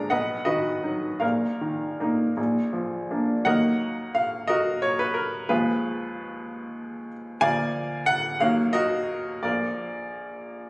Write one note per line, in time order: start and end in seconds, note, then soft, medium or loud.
0.00 0.13 A#1 soft
0.00 0.14 F3 soft
0.00 0.14 G#3 soft
0.00 0.14 D4 soft
0.00 0.13 A#4 medium
0.00 0.13 D5 medium
0.00 0.13 F5 medium
0.00 0.10 A#5 medium
0.10 1.19 B1 soft
0.10 0.44 B4 medium
0.10 0.44 D#5 medium
0.10 0.46 F#5 medium
0.45 1.07 D#3 soft
0.45 1.18 F#4 medium
0.45 1.18 B4 medium
0.45 1.21 D#5 medium
0.83 1.18 F#3 soft
0.83 1.18 D#4 soft
1.20 2.34 A#1 soft
1.20 2.33 A#4 soft
1.20 2.36 F5 medium
1.61 2.23 D#3 soft
2.00 2.34 A#3 soft
2.00 2.34 D#4 soft
2.37 3.44 A#1 soft
2.73 3.33 F3 soft
3.11 3.44 A#3 soft
3.11 3.44 D4 soft
3.45 5.45 D#2 soft
3.45 5.46 F#3 soft
3.45 5.46 A#3 soft
3.45 5.46 D#4 soft
3.45 4.13 A#4 medium
3.45 4.13 D#5 medium
3.45 4.16 F#5 medium
4.15 4.50 F5 medium
4.47 4.81 F#4 medium
4.47 4.81 A#4 medium
4.47 4.83 D#5 medium
4.82 5.00 C#5 medium
4.99 5.17 B4 medium
5.14 5.49 A#4 medium
5.49 7.39 D#2 medium
5.49 7.39 F3 soft
5.49 7.40 G#3 soft
5.49 7.08 F4 medium
5.49 7.08 G#4 medium
5.49 7.12 B4 medium
7.41 8.37 D2 medium
7.41 8.37 F3 medium
7.41 8.37 A#3 soft
7.41 8.38 F4 medium
7.41 8.04 D5 medium
7.41 8.03 F5 medium
7.41 8.07 G#5 loud
8.06 8.40 F#5 loud
8.40 9.40 D#2 medium
8.40 9.40 F#3 medium
8.40 9.40 A#3 medium
8.40 9.40 D#4 medium
8.40 8.74 F5 loud
8.73 9.39 F#4 medium
8.73 9.39 A#4 medium
8.73 9.42 D#5 loud
9.43 10.70 A#1 soft
9.43 10.70 F3 soft
9.43 10.70 A#3 soft
9.43 10.70 F4 medium
9.43 10.70 A#4 medium
9.43 10.70 D5 medium